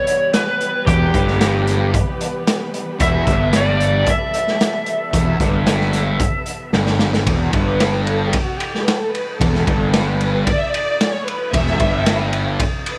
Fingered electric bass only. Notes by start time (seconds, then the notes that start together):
0.87 E1
1.14 G1
3.00 E1
3.27 G1
5.13 E1
5.40 G1
6.73 G1
7.27 E1
7.54 G1
9.41 E1
9.67 G1
11.54 E1
11.80 G1